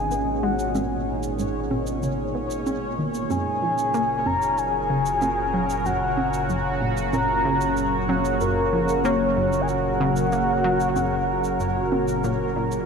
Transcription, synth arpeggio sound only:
0.11 0.21 B3 medium
0.43 0.60 G#3 loud
0.75 1.00 G#2 medium
1.39 1.56 G#2 medium
1.71 1.88 B2 medium
2.03 2.13 C#3 medium
2.35 2.52 B3 medium
2.98 3.09 D#3 medium
3.31 3.56 F#2 medium
3.62 3.79 F3 medium
3.94 4.19 A#3 loud
4.26 4.36 F#2 medium
4.90 5.15 C#3 loud
5.22 5.32 A#3 medium
5.54 5.70 F#3 loud
5.86 6.11 F#2 medium
6.49 6.66 F#2 medium
6.81 6.98 A#2 medium
7.13 7.23 A#2 medium
7.45 7.70 C#3 loud
8.09 8.26 F#3 loud
8.41 8.66 F#2 medium
8.73 8.90 F3 medium
9.05 9.30 A#3 loud
9.37 9.47 F#2 medium
10.01 10.26 C#3 loud
10.32 10.43 A#3 medium
10.64 10.81 F#3 loud
10.96 11.21 F#2 medium
11.60 11.77 F#2 medium
11.92 12.09 A#2 medium
12.24 12.34 A#2 medium
12.56 12.66 A#2 medium

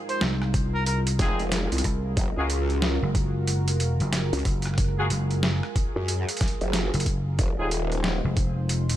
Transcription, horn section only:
1.19 1.40 C4 medium
1.19 1.40 D#4 medium
1.19 1.40 F4 medium
1.19 1.40 G#4 medium
2.37 2.45 A#3 medium
2.37 2.45 F4 medium
2.37 2.45 F#4 medium
2.37 2.45 G#4 medium
4.98 5.06 A#3 medium
4.98 5.06 F4 medium
4.98 5.06 F#4 medium
4.98 5.06 G#4 loud
7.59 7.67 C4 medium
7.59 7.67 D#4 medium
7.59 7.67 F4 medium
7.59 7.67 G#4 medium

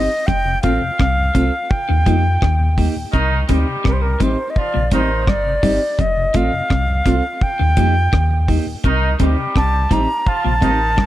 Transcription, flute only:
0.00 0.28 D#5 loud
0.27 0.62 G5 loud
0.62 1.72 F5 loud
1.70 2.77 G5 loud
3.88 3.94 A#4 medium
3.93 4.03 C5 medium
4.02 4.24 A#4 medium
4.23 4.52 C5 medium
4.50 4.60 D#5 medium
4.58 4.93 D5 medium
4.94 5.30 C5 medium
5.29 6.02 D5 medium
6.01 6.38 D#5 medium
6.36 7.44 F5 loud
7.43 8.49 G5 loud
9.57 9.94 A5 loud
9.93 10.30 A#5 loud
10.28 11.06 A5 loud

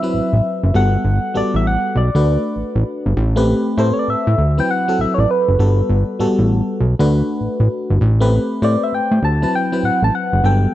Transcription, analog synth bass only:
0.14 0.21 A1 medium
0.33 0.41 A1 medium
0.63 0.72 F#1 medium
0.74 0.97 G1 loud
1.05 1.19 G1 loud
1.35 1.43 A1 soft
1.54 1.77 A1 medium
1.95 2.10 B1 loud
2.15 2.38 D2 medium
2.56 2.64 A1 soft
2.75 2.84 A1 medium
3.06 3.14 G1 medium
3.17 3.54 A1 loud
3.77 3.92 A2 loud
4.08 4.16 A2 soft
4.27 4.35 A2 loud
4.38 4.61 D2 medium
4.99 5.07 A1 medium
5.18 5.26 A1 medium
5.48 5.57 F#1 medium
5.59 5.82 G1 loud
5.89 6.04 G1 loud
6.20 6.27 A1 soft
6.39 6.62 A1 medium
6.80 6.95 B1 medium
6.99 7.22 D2 medium
7.41 7.48 A1 soft
7.60 7.68 A1 medium
7.90 7.99 G1 medium
8.01 8.39 A1 loud
8.62 8.77 A2 loud
8.93 9.00 A2 soft
9.11 9.20 A2 medium
9.22 9.46 D2 loud
9.83 9.91 A1 soft
10.02 10.11 A1 medium
10.33 10.41 F#1 medium
10.44 10.67 G1 loud

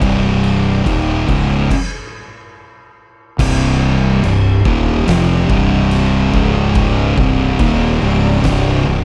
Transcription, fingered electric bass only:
0.01 0.82 C1 medium
0.86 1.25 D#1 medium
1.28 1.68 C#1 medium
3.39 4.19 C1 medium
4.24 4.63 C1 medium
4.65 5.05 D#1 medium
5.08 5.47 F1 loud
5.50 6.30 C1 medium
6.34 7.14 C#1 loud
7.17 7.57 C1 medium
7.59 7.99 D#1 medium
8.02 8.41 C#1 medium
8.44 8.83 C1 medium
8.87 9.04 C1 medium

